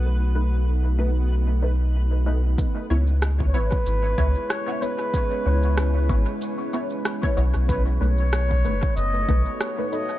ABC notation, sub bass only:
X:1
M:4/4
L:1/16
Q:"Swing 16ths" 1/4=94
K:C#m
V:1 name="Sub bass" clef=bass
B,,,16 | z2 C,,4 G,,, z G,,,2 C,, z4 z | z2 C,,4 G,,, z6 z B,,, B,,,- | B,,,2 B,,,4 F,,, z F,,,2 B,,, z4 z |]